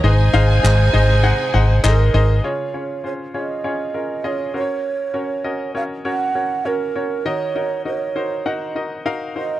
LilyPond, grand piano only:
<<
  \new Staff \with { instrumentName = "Grand piano" } { \time 4/4 \key des \major \tempo 4 = 100 <ees' aes' c'' ees''>8 <ees' aes' c'' f''>8 <ees' aes' c'' ees''>8 <ees' aes' c'' ees''>8 <ees' aes' c'' ges''>8 <ees' aes' c'' ges''>8 <ees' aes' c'' ees''>8 <ees' aes' c'' ees''>8 | <des' f' aes' des''>8 <des' f' aes' des''>8 <des' f' aes' c''>8 <des' f' aes' des''>8 <des' f' aes' des''>8 <des' f' aes' bes'>8 <des' f' aes' ees''>8 <des' ges' bes' c'' des''>8~ | <des' ges' bes' c'' des''>8 <des' ges' bes' des''>8 <des' ges' bes' ees''>8 <des' ges' bes' des''>8 <des' ges' bes' des''>8 <des' ges' bes' des''>8 <des' ges' bes' des''>8 <des' ges' bes' des''>8 | <ees' ges' bes' ees''>8 <ees' ges' bes' ees''>8 <ees' ges' bes' ees''>8 <ees' ges' bes' c''>8 <ees' ges' bes' ges''>8 <ees' ges' bes' ees''>8 <ees' ges' bes' f''>8 <ees' ges' bes' c''>8 | }
  \new Staff \with { instrumentName = "Grand piano" } { \clef bass \time 4/4 \key des \major aes,4. r2 r8 | des4. r2 r8 | r1 | ees4. r2 r8 | }
>>